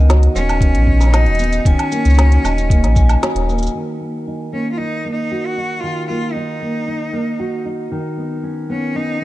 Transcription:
Already playing: sub bass C#2, nylon-string guitar D#3 B3, vibraphone D#5
0.09 nylon-string guitar F#4, snare, closed hi-hat, shaker
0.23 closed hi-hat
0.35 sub bass D#1, nylon-string guitar C#4, cello C#4, vibraphone G#5, shaker
0.49 closed hi-hat, low woodblock, shaker
0.61 nylon-string guitar B3, kick, closed hi-hat, shaker
0.73 sub bass A#1, closed hi-hat
0.87 nylon-string guitar C#4, kick
1.01 snare, shaker
1.03 snare
1.05 snare
1.08 snare
1.10 cello D#4, nylon-string guitar F#4, vibraphone D#5, snare
1.14 snare, closed hi-hat, low woodblock, shaker
1.26 sub bass D#1, closed hi-hat
1.35 closed hi-hat
1.39 nylon-string guitar B3, shaker
1.44 closed hi-hat
1.52 closed hi-hat, shaker
1.65 sub bass D#1, nylon-string guitar D#3, cello C#4, vibraphone G#5, kick, closed hi-hat, shaker
1.79 closed hi-hat, low woodblock
1.92 nylon-string guitar A#3, shaker
2.05 sub bass C#2, closed hi-hat, shaker
2.10 shaker
2.14 nylon-string guitar F#4, shaker
2.19 snare, closed hi-hat, shaker
2.32 closed hi-hat
2.44 sub bass D#1, nylon-string guitar C#4, vibraphone D#5, low woodblock, shaker
2.58 closed hi-hat, shaker
2.70 nylon-string guitar A#3, kick, closed hi-hat, shaker
2.83 sub bass A#1, snare, closed hi-hat
2.95 nylon-string guitar C#4, vibraphone G#5, kick, shaker
3.09 closed hi-hat, low woodblock, shaker
3.22 nylon-string guitar F#4, snare, closed hi-hat, shaker
3.35 sub bass D#1, closed hi-hat
3.49 nylon-string guitar A#3, shaker
3.58 shaker
3.63 closed hi-hat, shaker
3.67 shaker
3.75 nylon-string guitar D#3
4.01 nylon-string guitar A#3
4.27 nylon-string guitar D#4
4.53 nylon-string guitar A#3, cello C#4
4.72 cello F4
4.78 cello D#4, nylon-string guitar D#4
5.05 nylon-string guitar A#3
5.12 cello D#4
5.31 nylon-string guitar F#4
5.46 cello F#4
5.57 nylon-string guitar D#4
5.80 nylon-string guitar D#3, cello F4
6.07 nylon-string guitar A#3, cello F4
6.33 cello D#4, nylon-string guitar D#4
6.62 nylon-string guitar A#3
6.88 nylon-string guitar D#4
7.13 nylon-string guitar A#3
7.40 nylon-string guitar F#4
7.65 nylon-string guitar D#4
7.92 nylon-string guitar D#3
8.17 nylon-string guitar B3
8.43 nylon-string guitar C#4
8.69 nylon-string guitar B3, cello C#4
8.95 nylon-string guitar C#4, cello D#4

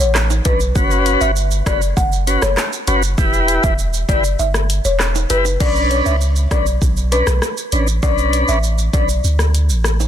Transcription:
0.00 sub bass A1, marimba C#5, shaker
0.15 cross-stick, clap, shaker
0.30 high timbale, shaker
0.45 sub bass B1, tonewheel organ C#4 D4 B4, marimba B4, kick, closed hi-hat, shaker
0.60 shaker
0.75 sub bass F#1, tonewheel organ C#4 F#4 B4, kick, shaker
0.91 shaker
1.06 closed hi-hat, shaker
1.21 sub bass G1, marimba E5, shaker
1.36 shaker
1.51 shaker
1.66 sub bass F#1, tonewheel organ C#4 F#4 B4, marimba D5, kick, cross-stick, closed hi-hat, shaker
1.82 shaker
1.97 sub bass F#1, marimba F#5, kick, shaker
2.12 shaker
2.27 tonewheel organ C#4 F#4 B4, closed hi-hat, shaker
2.42 sub bass F#1, marimba C#5, cross-stick, shaker
2.57 cross-stick, clap, shaker
2.73 shaker
2.87 sub bass F#1, tonewheel organ C#4 F#4 B4, closed hi-hat, shaker
3.02 shaker
3.18 sub bass E1, tonewheel organ E4 G4 B4, kick, shaker
3.33 shaker
3.48 closed hi-hat, shaker
3.64 sub bass E1, marimba E5, kick, shaker
3.79 shaker
3.93 shaker
4.09 sub bass F#1, tonewheel organ E4 G4 B4, marimba D5, kick, closed hi-hat, shaker
4.24 shaker
4.39 sub bass G1, marimba E5, high timbale, shaker
4.54 cross-stick, shaker
4.70 closed hi-hat, shaker
4.85 sub bass E1, marimba C#5, shaker
5.00 cross-stick, clap, shaker
5.15 high timbale, shaker
5.30 sub bass F#1, tonewheel organ E4 G4 B4, marimba B4, closed hi-hat, shaker
5.45 high timbale, shaker
5.60 sub bass B1, tonewheel organ C#4 D4 B4, marimba D5, kick, crash, shaker
5.76 shaker
5.91 marimba C#5, closed hi-hat, shaker
6.06 sub bass C#2, marimba E5, shaker
6.21 shaker
6.36 shaker
6.51 sub bass B1, tonewheel organ C#4 D4 B4, marimba D5, kick, cross-stick, closed hi-hat, shaker
6.66 shaker
6.82 sub bass B1, kick, shaker
6.97 shaker
7.12 tonewheel organ C#4 D4 B4, marimba B4, closed hi-hat, shaker
7.27 sub bass B1, cross-stick, shaker
7.42 cross-stick, shaker
7.57 shaker
7.72 sub bass A1, tonewheel organ C#4 D4 B4, closed hi-hat, shaker
7.87 shaker
8.03 sub bass B1, tonewheel organ C#4 D4 B4, marimba D5, kick, shaker
8.18 shaker
8.33 closed hi-hat, shaker
8.48 sub bass A1, marimba E5, shaker
8.63 shaker
8.78 shaker
8.93 sub bass B1, tonewheel organ C#4 D4 B4, marimba D5, kick, closed hi-hat, shaker
9.09 shaker
9.24 sub bass D2, shaker
9.39 cross-stick, shaker
9.55 closed hi-hat, shaker
9.69 sub bass A1, shaker
9.84 cross-stick, shaker
10.00 high timbale, shaker

